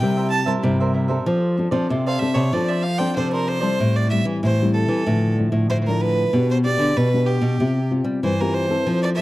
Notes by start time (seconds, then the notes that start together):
Already playing: G5
0.00 C3 G3 A#3 E4 A#4 C5 E5
0.17 A#4 C5 E5
0.29 A5, muted cavaquinho stroke
0.46 G3 A#3 E4 A#4 C5 E5
0.63 G2 C3 E4 A#4 C5 E5
0.80 A#4 C5 E5
0.93 E4 A#4 C5 E5
1.08 C4 D4 A4 A#4 C5 E5
1.26 F3 F4 A4 C5 D5
1.57 C4 D4 A4, muted cavaquinho stroke
1.71 F3 C4 D4 A4 C5 D5
1.89 C3 F4 A4 C5 D5
2.06 A4 C5 D5 F5
2.19 C4 D4 A4 E5
2.34 C3 A4 C5 C#5 D5
2.53 F3 C4 D4 F4 A4 C5 D5
2.69 A4 C5 D5 E5
2.83 F5, muted cavaquinho stroke
2.98 C4 D4 A4 C5 D5 G5
3.16 C3 F3 F4 A4 C5 D5
3.33 A4 A#4 C5 D5
3.46 F4 A4 C5 D5
3.60 G3 C4 E4 A4 C5 D5
3.80 A2
3.96 D5
4.10 G3 C4 E4 E5
4.25 E3
4.43 A2 E3 C5
4.62 G3 C4 E4
4.74 A4
4.88 E3
5.07 A2 D3 F3 A3 D4
5.38 F3 A3 D4
5.52 A2
5.70 A2 D3 C5
5.87 F3 A3 D4 A#4
6.02 B4
6.33 B2 B3 D4 G4
6.51 C5
6.65 B3 D4 G4 D5
6.78 D3
6.97 B2 B4
7.13 B3 D4 G4
7.26 G4
7.42 B2
7.60 C3 C4 F4 G4
7.91 C4 F4 G4
8.04 G3
8.23 G2 E3 C5
8.41 C4 F4 G4 A#4
8.54 C5
8.69 C4 E4 A4
8.87 F3
9.03 D5
9.15 C4 E5